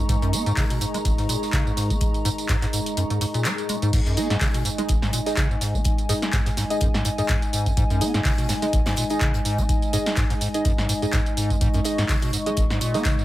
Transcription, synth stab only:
4.17 D#4 G#4 D#5
4.78 D#4 G#4 D#5
5.26 D#4 G#4 D#5
6.09 D#4 G#4 D#5
6.70 D#4 G#4 D#5
7.18 D#4 G#4 D#5
8.01 D#4 G#4 D#5
8.62 D#4 G#4 D#5
9.10 D#4 G#4 D#5
9.93 D#4 G#4 D#5
10.54 D#4 G#4 D#5
11.02 D#4 G#4 D#5
11.85 D#4 G#4 D#5
12.46 D#4 G#4 D#5
12.94 D#4 G#4 D#5

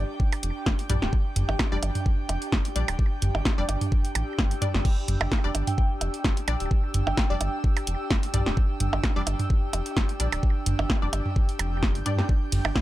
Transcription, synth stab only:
0.89 G3 D4 D5
1.72 G3 D4 D5
2.76 G3 D4 D5
3.58 G3 D4 D5
4.62 G3 D4 D5
5.44 G3 D4 D5
6.48 G3 D4 D5
7.30 G3 D4 D5
8.34 G3 D4 D5
9.16 G3 D4 D5
10.20 G3 D4 D5
11.02 G3 D4 D5
12.06 G3 D4 D5

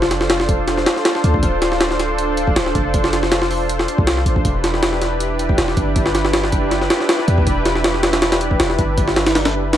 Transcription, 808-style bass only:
Already playing: F1
0.49 E1
1.24 D2
1.43 D1
2.56 D1
2.75 F1
3.50 E1
3.98 C2
4.26 A1
4.45 E1
5.58 E1
5.77 G1
6.52 F#1
7.28 E2
7.47 E1
8.60 E1
8.79 G1
9.54 F#1

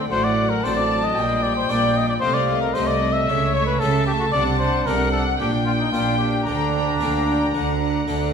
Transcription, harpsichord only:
0.12 A2
0.65 A2 C4 D4
1.18 A#2
1.69 A#2 A#3 D4
2.22 C3
2.75 C3 A3 D#4
3.29 C#3
3.81 C#3 A3 C#4
4.34 C3
4.87 C3 A3 D4
5.40 A#2
5.93 A#2 A#3 D4
6.47 D3
7.00 D3 A#3 D4
7.55 D3
8.08 D3 A3 D4

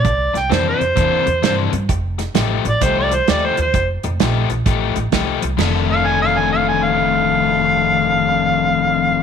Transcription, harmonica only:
Already playing: D5
0.38 G5
0.52 C5
0.69 C5
2.69 D5
2.84 C5
2.99 D5
3.15 C5
3.30 D5
3.45 C5
3.61 C5
5.91 F5
6.06 G#5
6.22 F5
6.38 G#5
6.52 F5
6.69 G#5
6.84 F5

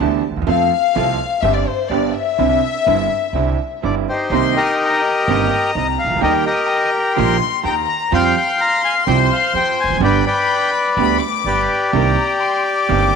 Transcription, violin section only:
Already playing: A5
0.49 F5
1.42 E5
1.53 D5
1.66 C5
1.89 D5
2.13 E5
4.33 C6
4.84 A#5
6.25 G5
6.69 A#5
7.16 C6
7.65 A#5
8.14 C6
10.03 B5
10.98 B5
11.20 D6
11.94 A#5
12.41 C6
12.65 D6

